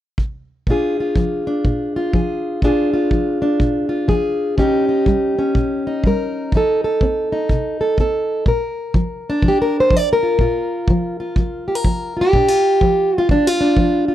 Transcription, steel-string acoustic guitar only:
0.68 1.13 A#2 medium
0.68 1.47 D4 soft
0.68 1.00 F4 soft
0.68 2.14 G#4 medium
1.00 1.95 F4 soft
1.17 1.61 F3 medium
1.47 2.61 D4 medium
1.65 2.10 A#2 medium
1.96 2.61 F4 medium
2.14 2.59 F3 medium
2.14 2.61 G#4 medium
2.63 3.08 A#2 medium
2.63 3.41 D4 medium
2.63 2.92 F4 medium
2.63 4.07 G#4 medium
2.94 3.88 F4 medium
3.13 3.57 F3 medium
3.42 4.56 D4 medium
3.59 4.05 A#2 medium
3.89 4.55 F4 soft
4.08 4.54 F3 medium
4.08 4.55 G#4 medium
4.57 5.03 D#3 medium
4.57 5.37 C#4 medium
4.57 4.88 D#4 medium
4.57 6.05 G4 medium
4.89 5.86 D#4 medium
5.08 5.52 G3 medium
5.39 6.52 C#4 medium
5.56 6.01 A#2 medium
5.87 6.52 D#4 medium
6.06 6.50 G3 medium
6.06 6.52 A#4 medium
6.55 6.99 F3 medium
6.55 7.31 D#4 soft
6.55 6.83 A4 medium
6.84 7.80 A4 medium
7.03 7.47 C4 medium
7.32 8.45 D#4 medium
7.52 7.96 C3 medium
7.81 7.99 A4 medium
8.00 8.44 C4 medium
8.00 8.46 A4 medium
8.47 8.92 A#2 medium
8.47 9.48 A#4 soft
8.95 9.40 F3 medium
9.30 9.93 D4 medium
9.44 9.89 F3 medium
9.48 9.61 G4 medium
9.62 9.77 A#4 medium
9.80 9.97 C5 medium
9.93 10.37 F3 medium
9.93 10.10 D5 medium
10.13 11.67 A#4 medium
10.23 10.41 F4 soft
10.40 10.85 A#2 medium
10.40 11.20 F4 soft
10.90 11.34 F3 medium
11.20 12.16 F4 soft
11.38 11.82 F3 medium
11.68 11.75 G4 soft
11.75 12.17 A#4 soft
11.86 12.30 F3 medium
12.17 12.34 F4 soft
12.21 13.18 G4 medium
12.35 12.78 A#2 medium
12.35 12.48 D4 soft
12.48 13.13 F4 soft
12.83 13.26 F3 medium
13.18 13.47 F4 medium
13.31 13.75 F3 medium
13.31 13.47 D4 medium
13.47 14.07 F4 medium
13.61 14.15 D4 soft
13.78 14.15 F3 medium
14.08 14.15 F4 soft

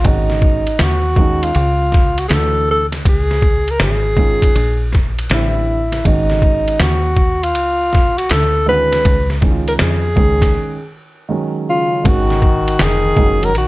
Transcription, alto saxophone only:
0.07 0.84 D#4 medium
0.83 1.46 F#4 medium
1.44 2.21 F4 medium
2.20 2.27 F#4 medium
2.29 2.36 G#4 medium
2.34 2.70 A4 medium
2.71 2.87 A4 medium
3.09 3.72 G#4 medium
3.71 3.82 A#4 loud
3.84 4.91 G#4 medium
5.33 6.03 E4 medium
6.07 6.82 D#4 medium
6.81 7.45 F#4 medium
7.43 8.19 F4 medium
8.18 8.33 F#4 medium
8.31 8.68 A4 medium
8.69 9.34 B4 loud
9.68 9.74 A#4 medium
9.82 10.90 G#4 medium
11.70 12.09 F4 medium
12.08 12.84 F#4 medium
12.83 13.47 G#4 loud
13.45 13.57 A#4 medium
13.58 13.68 F#4 medium

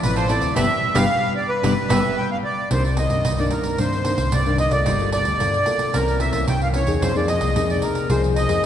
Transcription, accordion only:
0.03 0.15 B4 loud
0.16 0.29 C5 medium
0.29 0.54 D5 loud
0.56 0.98 E5 loud
0.95 1.33 F5 loud
1.36 1.50 D5 medium
1.49 2.26 B4 medium
1.90 2.15 E5 medium
2.17 2.30 G5 medium
2.31 2.37 F5 medium
2.44 2.69 D5 medium
2.71 2.84 C5 medium
2.85 2.97 D5 medium
2.97 3.39 D#5 medium
3.39 3.53 D5 medium
3.51 3.79 A#4 medium
3.78 4.34 C5 medium
4.33 4.58 D5 medium
4.60 4.72 D#5 medium
4.72 5.10 D5 medium
5.13 5.96 D5 medium
5.94 6.19 A#4 medium
6.21 6.46 E5 medium
6.48 6.61 G5 medium
6.62 6.68 F5 medium
6.75 7.03 C#5 medium
7.02 7.16 C5 medium
7.17 7.29 D5 medium
7.28 7.70 D#5 medium
7.70 7.84 D5 medium
7.82 8.10 A#4 medium
8.10 8.22 C5 medium
8.36 8.66 D#5 loud

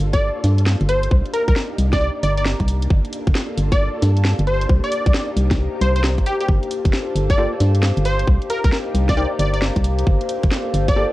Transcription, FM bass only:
0.00 0.31 G1 medium
0.44 0.76 G2 medium
0.81 1.08 G1 medium
1.11 1.22 C2 medium
1.48 1.54 C2 medium
1.78 2.10 C2 medium
2.23 2.55 G1 medium
2.60 2.88 C2 medium
2.90 3.02 G1 loud
3.27 3.33 G1 medium
3.58 3.89 G1 medium
4.03 4.34 G2 medium
4.39 4.67 G1 medium
4.69 4.81 C2 medium
5.06 5.12 C2 medium
5.37 5.68 C2 medium
5.81 6.19 C2 loud
6.18 6.24 G1 medium
6.48 6.60 G1 medium
6.85 6.91 G1 medium
7.16 7.47 G1 medium
7.60 7.92 G2 medium
7.97 8.25 G1 loud
8.28 8.39 C2 medium
8.64 8.71 C2 medium
8.95 9.26 C2 medium
9.39 9.71 G1 medium
9.76 10.04 C2 medium
10.07 10.18 G1 medium
10.43 10.50 G1 medium
10.74 11.05 G1 medium

